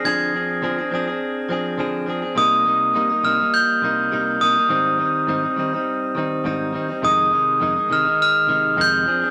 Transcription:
X:1
M:4/4
L:1/16
Q:"Swing 16ths" 1/4=103
K:Fdor
V:1 name="Glockenspiel"
a'4 z12 | e'6 f'2 g'6 e'2- | e'12- e'2 z2 | e'6 f'2 f'4 g'4 |]
V:2 name="Clean electric guitar"
[D,F,CDA]2 [F,CDA]2 [D,F,CDA] [CDA] [F,CDA] [CDA]3 [F,CDA]2 [D,F,CDA]2 [F,CDA] [CDA] | [C,G,B,E]2 [C,G,B,E]2 [C,G,B,E] [G,B,E] [C,G,B,E] [G,B,E]3 [C,G,B,E]2 [C,G,B,E]2 [C,G,B,E] [G,B,E] | [A,,E,G,CE]2 [E,G,CE]2 [A,,E,G,CE] [G,CE] [E,G,CE] [G,CE]3 [E,G,CE]2 [A,,E,G,CE]2 [E,G,CE] [G,CE] | [F,,C,E,A,E]2 [C,E,A,E]2 [F,,C,E,A,E] [E,A,E] [C,E,A,E] [E,A,E]3 [C,E,A,E]2 [F,,C,E,A,E]2 [F,CDA] [CDA] |]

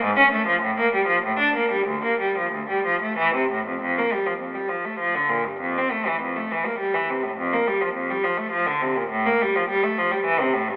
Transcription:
X:1
M:3/4
L:1/16
Q:1/4=102
K:Dm
V:1 name="Cello" clef=bass
^G,, ^C A, ^E, A,, B, =G, F, A,, D B, G, | D,, B, G, F, D,, G, F, A, E, C, A,, F,, | [K:F] F,, B, G, F, F,, G, F, A, F, D, B,, G,, | F,, C A, E, F,, A, E, B, G, E, C, A,, |
F,, B, G, F, F,, G, F, A, F, D, C, B,, | A,, B, G, F, G, A, F, G, E, C, A,, G,, |]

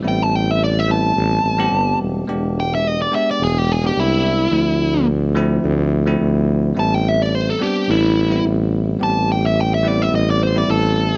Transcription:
X:1
M:4/4
L:1/16
Q:"Swing 16ths" 1/4=107
K:Am
V:1 name="Overdriven electric guitar"
g a g e d e a8 z2 | z2 g e ^d =d e d ^G =G ^G =G E4- | E4 z12 | a g e d c A G2 E4 z4 |
a2 g e g e d e ^d =d c d A4 |]
V:2 name="Tine electric piano"
[G,B,CE]6 [G,B,CE]4- [G,B,CE] [G,B,CG]4- [G,B,CG] | [^G,B,D=G]6 [^G,B,D=G]4- [^G,B,D=G] [^G,B,D=G]4- [^G,B,D=G] | [F,A,CE]6 [F,A,CE]4- [F,A,CE] [F,A,CE]4- [F,A,CE] | [G,B,CE]6 [G,B,CD]4- [G,B,CD] [G,B,CE]4- [G,B,CE] |
[G,B,CG]6 [G,B,CE]4- [G,B,CE] [G,B,CE]4- [G,B,CE] |]
V:3 name="Tuba" clef=bass
A,,,8 A,,,2 A,,,2 G,,,2 E,,,2 | E,,,6 z2 E,,,4 C,,4 | D,,8 D,,4 D,,4 | A,,,6 z2 A,,,4 A,,,4 |
A,,,8 A,,,4 A,,,4 |]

